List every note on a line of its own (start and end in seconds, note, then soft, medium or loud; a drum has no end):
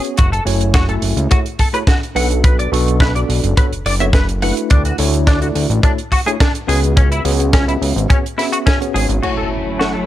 0.00 0.16 B3 medium
0.00 0.16 C#4 medium
0.00 0.16 F#4 medium
0.00 0.16 G#4 medium
0.00 0.16 C#5 medium
0.04 closed hi-hat soft
0.17 0.41 F#1 loud
0.17 0.29 F#4 medium
0.17 kick loud
0.17 closed hi-hat medium
0.32 0.43 A4 medium
0.32 closed hi-hat medium
0.45 0.98 F#1 medium
0.45 0.85 A3 medium
0.45 0.85 E4 medium
0.45 0.85 F#4 medium
0.45 0.86 C#5 loud
0.45 0.85 G#5 medium
0.45 open hi-hat loud
0.61 closed hi-hat medium
0.74 0.85 F#4 loud
0.74 kick loud
0.74 snare loud
0.74 closed hi-hat medium
0.89 1.27 A3 medium
0.89 1.27 E4 medium
0.89 1.28 F#4 medium
0.89 0.93 A4 medium
0.89 1.28 E5 medium
0.89 1.28 G#5 medium
0.89 closed hi-hat soft
1.02 1.14 F#1 medium
1.02 open hi-hat loud
1.17 1.28 C#2 medium
1.17 closed hi-hat medium
1.30 1.44 A3 medium
1.30 1.44 E4 medium
1.30 1.44 F#4 medium
1.30 1.38 F#4 medium
1.30 1.44 G#4 medium
1.30 1.44 C#5 medium
1.30 kick loud
1.30 closed hi-hat medium
1.46 closed hi-hat soft
1.59 1.67 A4 medium
1.59 kick medium
1.59 open hi-hat medium
1.73 1.81 A3 medium
1.73 1.81 E4 medium
1.73 1.82 F#4 medium
1.73 1.82 G#4 medium
1.73 1.78 B4 loud
1.73 1.82 C#5 medium
1.73 closed hi-hat medium
1.87 1.99 F#4 loud
1.87 kick loud
1.87 snare loud
1.87 closed hi-hat medium
2.03 closed hi-hat soft
2.15 2.68 B1 medium
2.15 2.69 B3 medium
2.15 2.69 D4 medium
2.15 2.69 F#4 medium
2.15 2.69 A4 medium
2.15 2.69 B4 loud
2.15 2.27 F#5 medium
2.15 open hi-hat medium
2.31 closed hi-hat soft
2.44 2.55 B4 medium
2.44 kick loud
2.44 closed hi-hat medium
2.59 2.69 D5 medium
2.59 closed hi-hat medium
2.72 3.24 B1 loud
2.72 3.12 B3 medium
2.72 3.12 D4 medium
2.72 3.12 F#4 medium
2.72 3.12 A4 medium
2.72 3.12 C#6 loud
2.72 open hi-hat medium
2.88 closed hi-hat medium
3.00 3.12 B4 loud
3.00 kick loud
3.00 snare loud
3.00 closed hi-hat medium
3.15 3.54 B3 medium
3.15 3.54 D4 medium
3.15 3.54 F#4 medium
3.15 3.54 A4 medium
3.15 3.19 D5 medium
3.15 3.54 D5 medium
3.15 closed hi-hat medium
3.29 3.41 B1 medium
3.29 open hi-hat medium
3.44 3.54 F#1 medium
3.44 closed hi-hat medium
3.57 3.71 B3 medium
3.57 3.71 D4 medium
3.57 3.71 F#4 medium
3.57 3.71 A4 medium
3.57 3.65 B4 medium
3.57 3.71 C#5 medium
3.57 kick loud
3.57 closed hi-hat medium
3.72 3.83 F#1 soft
3.72 closed hi-hat medium
3.86 4.52 F#1 loud
3.86 3.93 D5 medium
3.86 snare soft
3.86 open hi-hat loud
4.00 4.08 B3 medium
4.00 4.08 D4 medium
4.00 4.08 F#4 medium
4.00 4.08 A4 medium
4.00 4.09 C#5 medium
4.00 4.04 E5 loud
4.00 closed hi-hat medium
4.13 4.25 B4 loud
4.13 kick loud
4.13 snare loud
4.13 closed hi-hat medium
4.29 closed hi-hat soft
4.42 4.95 A3 medium
4.42 4.96 D4 medium
4.42 4.96 E4 medium
4.42 4.96 F#4 medium
4.42 4.96 B4 loud
4.42 4.53 F#5 medium
4.42 open hi-hat loud
4.57 closed hi-hat medium
4.70 4.93 D2 medium
4.70 4.81 D4 medium
4.70 kick loud
4.70 closed hi-hat medium
4.85 4.95 F#4 medium
4.85 closed hi-hat medium
4.98 5.51 D2 medium
4.98 5.38 A3 medium
4.98 5.38 D4 medium
4.98 5.38 E4 medium
4.98 5.38 F#4 medium
4.98 5.39 C#5 loud
4.98 open hi-hat loud
5.14 closed hi-hat medium
5.27 5.38 D4 medium
5.27 kick loud
5.27 snare loud
5.27 closed hi-hat medium
5.41 5.80 A3 medium
5.41 5.80 D4 medium
5.41 5.80 E4 medium
5.41 5.46 F#4 medium
5.41 5.81 F#4 medium
5.41 5.81 D5 medium
5.41 closed hi-hat medium
5.55 5.67 D2 medium
5.55 open hi-hat loud
5.70 5.81 A1 medium
5.70 closed hi-hat medium
5.83 5.97 A3 medium
5.83 5.97 D4 medium
5.83 5.91 D4 medium
5.83 5.97 E4 medium
5.83 5.97 F#4 medium
5.83 5.97 C#5 medium
5.83 kick loud
5.83 closed hi-hat medium
5.98 closed hi-hat soft
6.12 6.19 F#4 medium
6.12 kick medium
6.12 open hi-hat medium
6.26 6.34 A3 medium
6.26 6.34 D4 medium
6.26 6.35 E4 medium
6.26 6.35 F#4 medium
6.26 6.31 G#4 loud
6.26 6.35 C#5 medium
6.26 closed hi-hat medium
6.40 6.51 D4 loud
6.40 kick loud
6.40 snare loud
6.40 closed hi-hat medium
6.55 closed hi-hat medium
6.67 7.21 C#2 medium
6.67 7.21 B3 medium
6.67 7.22 C#4 medium
6.67 7.22 F#4 medium
6.67 7.22 G#4 medium
6.67 6.79 G#4 medium
6.67 7.22 B4 loud
6.67 open hi-hat loud
6.84 closed hi-hat soft
6.97 7.08 C#4 medium
6.97 kick loud
6.97 closed hi-hat medium
7.12 7.22 E4 medium
7.12 closed hi-hat medium
7.25 7.77 C#2 loud
7.25 7.64 B3 medium
7.25 7.65 C#4 medium
7.25 7.65 F#4 medium
7.25 7.65 G#4 medium
7.25 7.65 C#5 loud
7.25 open hi-hat loud
7.40 closed hi-hat medium
7.53 7.65 C#4 loud
7.53 kick loud
7.53 snare loud
7.53 closed hi-hat medium
7.67 8.06 B3 medium
7.67 8.07 C#4 medium
7.67 7.72 E4 medium
7.67 8.07 F#4 medium
7.67 8.07 G#4 medium
7.67 8.07 E5 medium
7.67 closed hi-hat medium
7.82 7.93 C#2 medium
7.82 open hi-hat loud
7.96 8.07 G#1 medium
7.96 closed hi-hat medium
8.09 8.23 B3 medium
8.09 8.17 C#4 medium
8.09 8.23 C#4 medium
8.09 8.24 F#4 medium
8.09 8.24 G#4 medium
8.09 8.24 C#5 medium
8.09 kick loud
8.09 closed hi-hat medium
8.26 closed hi-hat medium
8.37 8.77 B3 medium
8.37 8.78 C#4 medium
8.37 8.45 E4 medium
8.37 8.78 F#4 medium
8.37 8.78 G#4 medium
8.37 8.78 E5 medium
8.37 snare soft
8.37 open hi-hat medium
8.52 8.57 F#4 loud
8.52 closed hi-hat medium
8.66 8.77 C#4 loud
8.66 kick loud
8.66 snare loud
8.66 closed hi-hat medium
8.81 9.21 B3 medium
8.81 9.21 C#4 medium
8.81 9.21 F#4 medium
8.81 9.22 G#4 medium
8.81 9.22 C#5 medium
8.81 closed hi-hat medium
8.94 9.06 G#1 medium
8.94 9.06 G#4 medium
8.94 open hi-hat loud
9.09 9.20 G#1 loud
9.09 closed hi-hat medium
9.22 10.06 F#3 medium
9.22 10.06 A3 medium
9.22 10.06 C#4 medium
9.22 10.06 E4 medium
9.22 9.34 F#4 medium
9.22 10.06 F#4 medium
9.22 10.06 C#5 medium
9.22 10.06 G#5 medium
9.22 crash medium
9.22 impact medium
9.37 9.48 A4 medium
9.79 9.91 F#4 medium
9.79 snare loud
9.94 9.98 A4 medium